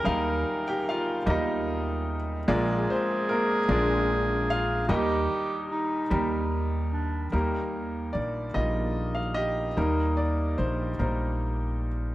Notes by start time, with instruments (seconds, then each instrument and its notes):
Already playing: upright piano G3 D#4 F4 G4 G#4 A#4 D5 F5 G5 G#5 A#5, clarinet A#4
0.04 upright piano D#2 D#3 G3 D#4 A#4 F5, upright bass D#2
0.68 upright piano G4 G5
0.89 upright piano F4 F5
1.26 upright bass D#2, upright piano G3 D#4 A#4 D#5
1.30 upright piano D#4 G4
2.48 upright bass A#1, upright piano A#1 A#2 G#3 F4 A#4 D5, clarinet G#4
2.90 upright piano C4 C5
3.29 upright piano A#3 A#4
3.68 upright bass A#1, upright piano G#3 D4 F4 G#4 A#4 D5
4.50 upright piano F4 F5
4.88 upright bass D#2, upright piano D#2 D#3 G3 D#4 G4 A#4 D#5, clarinet G4
5.71 clarinet D#4
6.10 upright bass D#2, upright piano G3 G4 A#4
6.92 clarinet D4
7.32 upright piano D#2 D#3 G3 A#3 D#4 G4 A#4, upright bass D#2
8.13 upright bass A#1, upright piano D5
8.54 upright bass A#1, upright piano G3 A#3 D#4 F4 D#5
9.15 upright piano F5
9.34 upright piano G4 D#5
9.77 upright bass D#2, upright piano D#2 D#3 G3 A#3 D#4 A#4
10.17 upright piano D5
10.58 upright bass A#1, upright piano C5
10.99 upright bass A#1, upright piano G3 A#3 D#4 A#4 C5